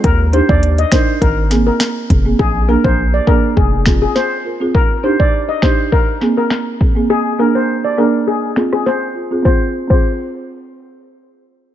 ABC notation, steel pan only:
X:1
M:4/4
L:1/16
Q:1/4=102
K:Fdor
V:1 name="Steel pan"
B z c d z e c z B z2 B z4 | A z B c z d B z A z2 A c3 z | B z c d z e c z B z2 B z4 | A z B c z d B z A z2 A c3 z |
c z2 c8- c z4 |]